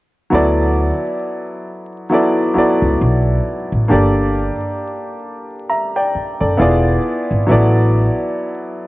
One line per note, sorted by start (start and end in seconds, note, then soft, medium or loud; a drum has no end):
0.30 0.90 D2 medium
0.30 2.01 F#3 medium
0.30 2.02 B3 medium
0.30 2.02 E4 medium
0.30 2.03 A4 medium
0.35 2.03 D5 medium
2.10 2.52 F#3 medium
2.10 2.53 B3 medium
2.10 2.54 E4 medium
2.10 2.54 A4 medium
2.14 2.55 D5 medium
2.54 3.82 F#3 medium
2.54 3.83 B3 medium
2.54 3.83 E4 medium
2.54 3.84 A4 medium
2.54 muted upright bass stroke soft
2.58 3.85 D5 medium
2.82 2.97 C#2 medium
3.01 3.37 B1 medium
3.72 3.87 A1 medium
3.88 4.48 G1 medium
3.88 5.59 A#3 medium
3.88 5.60 D4 medium
3.88 5.60 G4 medium
3.88 5.61 A4 medium
3.92 5.61 D5 medium
5.70 5.94 E5 soft
5.70 5.94 A#5 medium
5.96 6.38 D5 soft
5.96 6.38 G5 medium
6.15 muted upright bass stroke soft
6.41 6.56 F#1 medium
6.41 6.83 A4 soft
6.41 6.60 D5 medium
6.57 6.96 E1 medium
6.57 7.43 B3 medium
6.57 7.44 E4 medium
6.57 7.44 F4 medium
6.57 7.45 G#4 medium
6.62 7.45 D5 medium
7.31 7.45 G#1 medium
7.47 8.06 A1 medium
7.47 8.87 F#3 medium
7.47 8.87 B3 medium
7.47 8.87 E4 medium
7.47 8.87 A4 medium
7.51 8.87 D5 medium